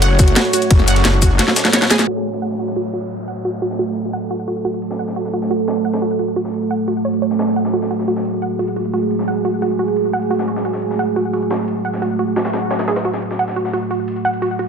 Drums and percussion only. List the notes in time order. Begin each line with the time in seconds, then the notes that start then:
0.02 closed hi-hat, ride
0.19 kick, closed hi-hat, ride, shaker
0.28 closed hi-hat
0.36 snare, closed hi-hat, ride
0.45 ride
0.53 closed hi-hat, ride, shaker
0.62 closed hi-hat, ride, shaker
0.71 kick, closed hi-hat, ride
0.79 snare
0.88 closed hi-hat, ride, shaker
0.96 snare, closed hi-hat
1.05 snare, closed hi-hat, ride
1.13 snare
1.22 kick, closed hi-hat, ride, shaker
1.39 snare, closed hi-hat, ride
1.48 snare
1.56 snare, closed hi-hat, ride, shaker
1.65 snare, closed hi-hat, ride
1.73 snare, closed hi-hat, shaker
1.82 snare, closed hi-hat
1.91 snare, closed hi-hat, shaker
1.99 snare, closed hi-hat, shaker
2.08 ride, crash
2.16 snare
2.25 ride
2.33 snare
2.42 ride
2.51 snare
2.59 ride
2.68 snare
2.76 ride
2.93 ride
3.11 ride
3.19 ride
3.28 ride
3.36 ride
3.45 ride
3.62 ride
3.71 snare
3.79 ride
3.96 ride
4.13 ride
4.31 ride
4.39 ride
4.48 ride
4.65 ride
4.73 ride
4.82 ride
4.91 snare
4.99 ride
5.08 snare
5.16 ride
5.25 snare
5.33 ride
5.42 snare
5.51 ride
5.68 snare, ride
5.76 ride
5.85 ride
5.93 snare, ride
6.02 ride
6.11 ride
6.19 ride
6.36 ride
6.45 snare
6.53 ride
6.71 ride
6.88 ride
7.05 ride
7.13 ride
7.22 ride
7.31 snare
7.39 snare, ride
7.48 snare
7.56 ride
7.65 snare
7.73 ride
7.82 snare
7.91 ride
7.99 snare
8.08 ride
8.16 snare
8.25 ride
8.42 ride
8.59 ride
8.68 ride
8.76 ride
8.85 ride
8.93 ride
9.11 ride
9.19 snare
9.28 ride
9.45 ride
9.62 ride
9.79 ride
9.88 ride
9.96 ride
10.13 ride
10.22 ride
10.31 ride
10.39 snare
10.48 ride
10.56 snare
10.65 ride
10.73 snare
10.82 ride
10.91 snare
10.99 ride
11.16 ride
11.33 ride
11.42 ride
11.51 snare, ride
11.59 snare
11.68 ride
11.85 ride
11.93 snare
12.02 ride
12.19 ride
12.36 snare, ride
12.45 snare, ride
12.53 snare, ride
12.62 ride
12.71 snare, ride
12.79 snare, ride
12.88 snare, ride
12.96 snare, ride
13.05 ride
13.13 snare
13.22 ride
13.31 snare
13.39 ride
13.48 snare
13.56 ride
13.65 snare
13.73 ride
13.91 ride
14.08 ride
14.16 ride
14.25 ride
14.33 ride
14.42 ride
14.59 ride